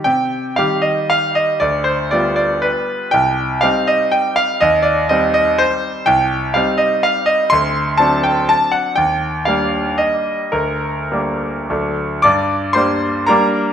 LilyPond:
<<
  \new Staff \with { instrumentName = "Grand piano" } { \time 3/4 \key c \minor \tempo 4 = 119 g''4 f''8 ees''8 f''8 ees''8 | d''8 c''8 d''8 d''8 b'4 | g''4 f''8 ees''8 g''8 f''8 | ees''8 d''8 ees''8 ees''8 c''4 |
\key g \minor g''4 f''8 ees''8 f''8 ees''8 | c'''4 a''8 g''8 a''8 fis''8 | g''4 f''4 ees''4 | bes'2 r4 |
<d'' d'''>4 <c'' c'''>4 <bes' bes''>4 | }
  \new Staff \with { instrumentName = "Grand piano" } { \clef bass \time 3/4 \key c \minor c4 <ees g g'>2 | d,4 <g b f'>2 | c,4 <g c' ees'>2 | ees,4 <g c' ees'>2 |
\key g \minor c,4 <g c' ees'>2 | d,4 <fis c' d'>2 | ees,4 <g bes d'>2 | d,4 <g bes d'>4 <d, fis a d'>4 |
g,4 <g bes d'>4 <g bes d'>4 | }
>>